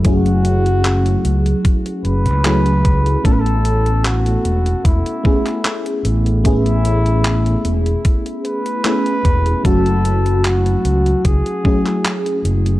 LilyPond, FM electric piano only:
\new Staff \with { instrumentName = "FM electric piano" } { \time 4/4 \key a \major \tempo 4 = 75 <fis a cis' e' gis'>2. <fis a cis' e' gis'>4 | <a b cis' e' a'>2~ <a b cis' e' a'>8 <a b cis' e' gis'>4. | <a b cis' e' gis'>2. <a b cis' e' gis'>4 | <fis a cis' e' fis'>2~ <fis a cis' e' fis'>8 <fis a cis' e' gis'>4. | }